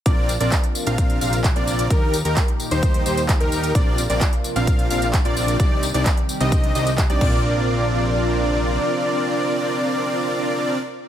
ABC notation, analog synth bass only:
X:1
M:4/4
L:1/16
Q:1/4=130
K:Bb
V:1 name="Analog synth bass" clef=bass
B,,,3 B,,, z3 B,,,3 B,,,3 B,,,3 | E,,3 E,, z3 E,,3 E,,3 E,,3 | B,,,3 B,,, z3 B,,,3 B,,,3 B,,,3 | C,,3 C,, z3 C,,3 C,,3 C,, B,,,2- |
B,,,12 z4 | z16 |]